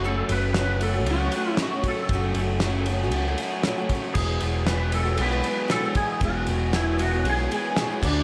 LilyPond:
<<
  \new Staff \with { instrumentName = "Electric slide guitar" } { \time 4/4 \key e \mixolydian \tempo 4 = 116 a'8 b'8 b'8 a'8 fis'4 fis'8 a'8~ | a'4. r2 r8 | gis'4 b'8 a'8 b'4 a'8 gis'8 | fis'4 e'8 fis'8 gis'4. d'8 | }
  \new Staff \with { instrumentName = "Overdriven electric guitar" } { \time 4/4 \key e \mixolydian <fis, cis fis a cis' fis'>8 <fis a cis' fis'>8 <fis a cis' fis'>8 <fis, cis fis a cis' fis'>8 <fis a cis' fis'>8 <fis a cis' fis'>8 <fis, cis fis a cis' fis'>8 <fis a cis' fis'>8 | <fis, cis fis a cis' fis'>8 <fis a cis' fis'>8 <fis a cis' fis'>8 <fis, cis fis a cis' fis'>8 <fis a cis' fis'>8 <fis a cis' fis'>8 <fis, cis fis a cis' fis'>8 <fis a cis' fis'>8 | <e, b, e gis b gis'>8 <e gis b gis'>8 <e gis b gis'>8 <e, b, e gis b gis'>8 <e gis b gis'>8 <e gis b gis'>8 <e, b, e gis b gis'>8 <e gis b gis'>8 | <e, b, e gis b gis'>8 <e gis b gis'>8 <e gis b gis'>8 <e, b, e gis b gis'>8 <e gis b gis'>8 <e gis b gis'>8 <e, b, e gis b gis'>8 <d a d' fis'>8 | }
  \new Staff \with { instrumentName = "Steel-string acoustic guitar" } { \time 4/4 \key e \mixolydian <fis, cis fis a cis' fis'>8 <fis a cis' fis'>8 <fis, cis fis a cis' fis'>8 <fis a cis' fis'>16 <fis a cis' fis'>8 <fis a cis' fis'>16 <fis a cis' fis'>8 <fis, cis fis a cis' fis'>16 <fis a cis' fis'>16 <fis a cis' fis'>8 | <fis, cis fis a cis' fis'>8 <fis a cis' fis'>8 <fis, cis fis a cis' fis'>8 <fis a cis' fis'>16 <fis a cis' fis'>8 <fis a cis' fis'>16 <fis a cis' fis'>8 <fis, cis fis a cis' fis'>16 <fis a cis' fis'>16 <fis a cis' fis'>8 | <e, b, fis gis b fis'>8 <fis gis b fis'>8 <e, b, fis gis b fis'>8 <fis gis b fis'>16 <fis gis b fis'>8 <fis gis b fis'>16 <fis gis b fis'>8 <e, b, fis gis b fis'>16 <fis gis b fis'>16 <fis gis b fis'>8 | <e, b, fis gis b fis'>8 <fis gis b fis'>8 <e, b, fis gis b fis'>8 <fis gis b fis'>16 <fis gis b fis'>8 <fis gis b fis'>16 <fis gis b fis'>8 <e, b, fis gis b fis'>16 <fis gis b fis'>16 <d a d' fis'>8 | }
  \new Staff \with { instrumentName = "Picked electric bass" } { \clef bass \time 4/4 \key e \mixolydian fis,,8 fis,,4. cis,8 r4. | fis,,8 fis,,4. cis,8 r4. | e,,8 e,,4. b,,8 r4. | e,,8 e,,4. b,,8 r4 d,8 | }
  \new DrumStaff \with { instrumentName = "Drums" } \drummode { \time 4/4 r8 cymr8 <cymr sn>8 cymr8 cymr8 cymr8 <cymr sn>8 <bd cymr>8 | <bd cymr>8 cymr8 <cymr sn>8 cymr8 cymr8 cymr8 <cymr sn>8 <bd cymr>8 | <cymc bd>8 cymr8 <cymr sn>8 cymr8 cymr8 cymr8 <cymr sn>8 <bd cymr>8 | <bd cymr>8 cymr8 <cymr sn>8 cymr8 cymr8 cymr8 <cymr sn>8 <cymc bd>8 | }
>>